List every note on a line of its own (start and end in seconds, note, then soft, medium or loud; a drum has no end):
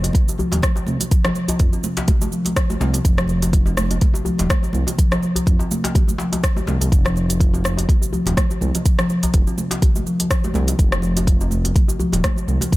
0.00 0.10 F1 loud
0.00 0.14 A#3 medium
0.00 djembe tone medium
0.04 closed hi-hat medium
0.04 cabasa medium
0.13 0.27 D#3 medium
0.13 kick loud
0.13 closed hi-hat soft
0.13 muted conga soft
0.13 high conga medium
0.13 cabasa soft
0.28 djembe tone medium
0.28 cabasa medium
0.38 0.46 F3 medium
0.38 high conga medium
0.38 djembe bass medium
0.38 cabasa medium
0.51 0.60 D#1 loud
0.51 closed hi-hat medium
0.51 djembe slap medium
0.51 muted conga medium
0.51 high conga medium
0.51 djembe tone loud
0.51 cabasa medium
0.62 kick loud
0.62 cross-stick medium
0.62 closed hi-hat soft
0.62 high conga loud
0.62 cabasa medium
0.76 muted conga soft
0.76 djembe tone medium
0.76 cabasa medium
0.87 0.97 C2 medium
0.87 0.94 C3 loud
0.87 high conga loud
0.87 cabasa soft
1.00 1.10 A#3 medium
1.00 closed hi-hat medium
1.00 muted conga medium
1.00 djembe tone medium
1.00 low conga medium
1.00 cabasa medium
1.11 1.19 F3 medium
1.11 kick loud
1.11 closed hi-hat soft
1.11 cabasa medium
1.25 1.34 F3 medium
1.25 cross-stick medium
1.25 djembe tone medium
1.25 low conga loud
1.25 cabasa medium
1.35 1.43 F3 medium
1.35 muted conga medium
1.35 cabasa medium
1.48 closed hi-hat medium
1.48 djembe tone medium
1.48 djembe bass loud
1.48 cabasa medium
1.59 1.70 F1 medium
1.59 1.72 F4 medium
1.59 kick loud
1.59 closed hi-hat soft
1.59 muted conga soft
1.59 cabasa medium
1.73 1.83 C4 medium
1.73 djembe tone medium
1.73 cabasa soft
1.84 1.91 C3 medium
1.84 muted conga medium
1.84 high conga loud
1.84 cabasa medium
1.97 2.07 A#3 medium
1.97 closed hi-hat medium
1.97 djembe slap loud
1.97 djembe tone medium
1.97 cabasa medium
2.08 2.20 D#3 medium
2.08 kick loud
2.08 closed hi-hat soft
2.08 muted conga soft
2.08 high conga medium
2.08 djembe bass medium
2.08 cabasa medium
2.21 djembe tone medium
2.21 high conga loud
2.21 cabasa medium
2.32 2.39 F3 loud
2.32 cabasa medium
2.45 closed hi-hat medium
2.45 muted conga soft
2.45 high conga medium
2.45 djembe tone medium
2.45 cabasa medium
2.56 kick loud
2.56 cross-stick medium
2.56 closed hi-hat soft
2.56 cabasa medium
2.70 muted conga soft
2.70 djembe tone medium
2.70 high conga loud
2.70 cabasa medium
2.80 2.99 C2 medium
2.80 2.88 C3 loud
2.80 djembe slap medium
2.80 high conga loud
2.80 cabasa medium
2.93 3.04 A#3 medium
2.93 closed hi-hat medium
2.93 muted conga soft
2.93 djembe tone medium
2.93 cabasa medium
3.05 3.97 F1 loud
3.05 3.12 F3 medium
3.05 kick loud
3.05 closed hi-hat soft
3.05 cabasa medium
3.18 3.28 F3 loud
3.18 cross-stick medium
3.18 djembe tone medium
3.18 low conga loud
3.18 cabasa medium
3.28 3.36 F3 medium
3.28 muted conga medium
3.28 cabasa medium
3.42 closed hi-hat medium
3.42 djembe tone loud
3.42 cabasa loud
3.53 3.66 F4 medium
3.53 kick loud
3.53 closed hi-hat soft
3.53 muted conga soft
3.53 cabasa medium
3.66 3.76 C4 medium
3.66 djembe tone medium
3.66 cabasa medium
3.77 3.85 C3 loud
3.77 cross-stick medium
3.77 muted conga soft
3.77 high conga loud
3.77 cabasa medium
3.91 4.01 A#3 medium
3.91 closed hi-hat medium
3.91 djembe tone medium
3.91 cabasa medium
4.01 4.14 D#3 medium
4.01 kick loud
4.01 closed hi-hat soft
4.01 muted conga soft
4.01 high conga loud
4.01 cabasa soft
4.14 djembe tone loud
4.14 cabasa medium
4.25 4.33 F3 loud
4.25 high conga medium
4.25 djembe bass medium
4.25 cabasa medium
4.38 4.47 D#1 loud
4.38 closed hi-hat medium
4.38 muted conga soft
4.38 djembe slap medium
4.38 high conga medium
4.38 djembe tone medium
4.38 cabasa medium
4.50 kick loud
4.50 cross-stick medium
4.50 closed hi-hat soft
4.50 high conga loud
4.50 cabasa loud
4.63 muted conga soft
4.63 djembe tone medium
4.63 cabasa medium
4.73 4.84 C2 medium
4.73 4.81 C3 loud
4.73 high conga loud
4.73 cabasa medium
4.87 4.97 A#3 medium
4.87 closed hi-hat medium
4.87 muted conga medium
4.87 djembe tone medium
4.87 low conga medium
4.87 cabasa loud
4.98 5.06 F3 medium
4.98 kick loud
4.98 closed hi-hat soft
4.98 cabasa medium
5.11 5.21 F3 loud
5.11 cross-stick medium
5.11 djembe tone loud
5.11 low conga medium
5.11 cabasa medium
5.23 5.30 F3 loud
5.23 muted conga soft
5.23 cabasa medium
5.36 closed hi-hat medium
5.36 djembe tone medium
5.36 djembe bass medium
5.36 cabasa medium
5.46 5.57 F1 medium
5.46 5.60 F4 medium
5.46 kick loud
5.46 closed hi-hat soft
5.46 muted conga soft
5.46 cabasa medium
5.59 5.70 C4 medium
5.59 djembe tone loud
5.59 cabasa medium
5.71 5.78 C3 medium
5.71 muted conga soft
5.71 high conga loud
5.71 cabasa medium
5.84 5.94 A#3 medium
5.84 closed hi-hat medium
5.84 djembe slap loud
5.84 djembe tone medium
5.84 cabasa medium
5.95 kick loud
5.95 closed hi-hat soft
5.95 muted conga soft
5.95 high conga medium
5.95 djembe bass medium
5.95 cabasa medium
6.08 djembe tone medium
6.08 high conga medium
6.08 cabasa medium
6.18 6.27 F3 medium
6.18 djembe slap medium
6.18 cabasa medium
6.32 closed hi-hat medium
6.32 muted conga soft
6.32 high conga medium
6.32 djembe tone medium
6.32 cabasa medium
6.44 kick loud
6.44 cross-stick medium
6.44 closed hi-hat soft
6.44 cabasa medium
6.56 muted conga soft
6.56 high conga loud
6.56 djembe tone medium
6.56 cabasa medium
6.67 6.78 C2 medium
6.67 6.75 C3 loud
6.67 djembe slap medium
6.67 high conga loud
6.67 cabasa medium
6.81 6.89 C2 medium
6.81 6.91 A#3 medium
6.81 closed hi-hat medium
6.81 muted conga medium
6.81 djembe tone medium
6.81 cabasa medium
6.92 7.84 F1 loud
6.92 6.99 F3 medium
6.92 kick loud
6.92 closed hi-hat soft
6.92 cabasa medium
7.05 7.15 F3 loud
7.05 cross-stick medium
7.05 djembe tone loud
7.05 low conga medium
7.05 cabasa medium
7.16 7.23 F3 medium
7.16 muted conga soft
7.16 cabasa medium
7.29 closed hi-hat medium
7.29 djembe tone medium
7.29 cabasa medium
7.40 7.53 F4 medium
7.40 kick loud
7.40 closed hi-hat soft
7.40 muted conga soft
7.40 cabasa medium
7.53 7.64 C4 medium
7.53 djembe tone loud
7.53 cabasa soft
7.64 7.72 C3 loud
7.64 cross-stick medium
7.64 muted conga medium
7.64 high conga medium
7.64 cabasa medium
7.77 7.88 A#3 medium
7.77 closed hi-hat medium
7.77 djembe tone medium
7.77 cabasa medium
7.89 8.01 D#3 medium
7.89 kick loud
7.89 closed hi-hat soft
7.89 muted conga soft
7.89 high conga medium
7.89 cabasa soft
8.02 djembe tone medium
8.02 cabasa medium
8.13 8.20 F3 loud
8.13 high conga medium
8.13 djembe bass medium
8.13 cabasa medium
8.26 8.34 D#1 loud
8.26 closed hi-hat medium
8.26 muted conga soft
8.26 djembe slap medium
8.26 djembe tone medium
8.26 high conga medium
8.26 cabasa medium
8.37 kick loud
8.37 cross-stick medium
8.37 closed hi-hat soft
8.37 high conga loud
8.37 cabasa medium
8.50 muted conga soft
8.50 djembe tone medium
8.50 cabasa medium
8.61 8.71 C2 medium
8.61 8.69 C3 loud
8.61 high conga loud
8.61 cabasa medium
8.75 8.85 A#3 medium
8.75 closed hi-hat medium
8.75 muted conga medium
8.75 djembe tone medium
8.75 low conga medium
8.75 cabasa medium
8.86 8.93 F3 medium
8.86 kick loud
8.86 closed hi-hat soft
8.86 cabasa medium
8.99 9.09 F3 loud
8.99 cross-stick medium
8.99 djembe tone medium
8.99 low conga loud
8.99 cabasa medium
9.10 9.17 F3 loud
9.10 muted conga soft
9.10 cabasa soft
9.23 closed hi-hat medium
9.23 djembe tone medium
9.23 djembe bass loud
9.23 cabasa medium
9.34 9.44 F1 medium
9.34 9.47 F4 medium
9.34 kick loud
9.34 closed hi-hat soft
9.34 cabasa medium
9.47 9.57 C4 medium
9.47 djembe tone medium
9.47 cabasa soft
9.58 9.65 C3 loud
9.58 muted conga soft
9.58 high conga medium
9.58 cabasa medium
9.71 9.81 A#3 medium
9.71 closed hi-hat medium
9.71 djembe slap medium
9.71 djembe tone medium
9.71 cabasa soft
9.82 kick loud
9.82 closed hi-hat soft
9.82 muted conga soft
9.82 high conga medium
9.82 djembe bass medium
9.82 cabasa soft
9.96 djembe tone medium
9.96 high conga medium
9.96 cabasa medium
10.06 10.14 F3 loud
10.06 cabasa soft
10.20 closed hi-hat medium
10.20 muted conga soft
10.20 high conga medium
10.20 djembe tone medium
10.20 cabasa soft
10.31 kick loud
10.31 cross-stick medium
10.31 closed hi-hat soft
10.31 cabasa medium
10.44 muted conga soft
10.44 high conga loud
10.44 djembe tone medium
10.44 cabasa medium
10.54 10.73 C2 medium
10.54 10.62 C3 loud
10.54 djembe slap medium
10.54 high conga loud
10.54 cabasa soft
10.67 10.78 A#3 medium
10.67 closed hi-hat medium
10.67 muted conga medium
10.67 djembe tone medium
10.67 cabasa medium
10.79 11.71 F1 medium
10.79 10.86 F3 medium
10.79 kick loud
10.79 closed hi-hat soft
10.79 cabasa medium
10.92 11.02 F3 loud
10.92 cross-stick medium
10.92 djembe tone medium
10.92 low conga loud
10.92 cabasa soft
11.02 11.10 F3 loud
11.02 muted conga medium
11.02 cabasa soft
11.17 closed hi-hat medium
11.17 djembe tone medium
11.17 cabasa medium
11.27 11.40 F4 medium
11.27 kick loud
11.27 closed hi-hat soft
11.27 muted conga soft
11.27 cabasa soft
11.41 11.50 C4 medium
11.41 djembe tone medium
11.41 cabasa soft
11.51 11.59 C3 loud
11.51 muted conga soft
11.51 high conga medium
11.51 cabasa medium
11.65 11.75 A#3 medium
11.65 closed hi-hat medium
11.65 djembe tone medium
11.65 cabasa soft
11.75 11.88 D#3 medium
11.75 kick loud
11.75 closed hi-hat soft
11.75 muted conga soft
11.75 high conga medium
11.75 cabasa soft
11.88 djembe tone medium
11.88 cabasa medium
11.99 12.07 F3 loud
11.99 high conga medium
11.99 djembe bass medium
11.99 cabasa soft
12.12 12.21 D#1 loud
12.12 closed hi-hat medium
12.12 muted conga medium
12.12 djembe slap medium
12.12 high conga medium
12.12 djembe tone medium
12.12 cabasa soft
12.24 kick loud
12.24 cross-stick medium
12.24 closed hi-hat soft
12.24 high conga loud
12.24 cabasa medium
12.36 muted conga soft
12.36 djembe tone medium
12.36 cabasa medium
12.48 12.58 C2 medium
12.48 12.56 C3 loud
12.48 high conga medium
12.48 cabasa soft
12.61 12.71 A#3 medium
12.61 closed hi-hat medium
12.61 muted conga medium
12.61 djembe tone medium
12.61 low conga medium
12.61 cabasa medium
12.72 12.77 F3 medium
12.72 kick loud
12.72 closed hi-hat soft
12.72 cabasa medium